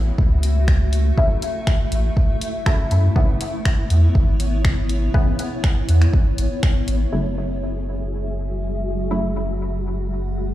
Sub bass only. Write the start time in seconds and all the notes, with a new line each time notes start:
Already playing: A1
0.18 C#2
1.92 A1
2.91 F#2
3.16 C#2
3.90 E2
4.15 G#1
5.89 E2
6.38 G#1
6.88 G#1
7.13 F#1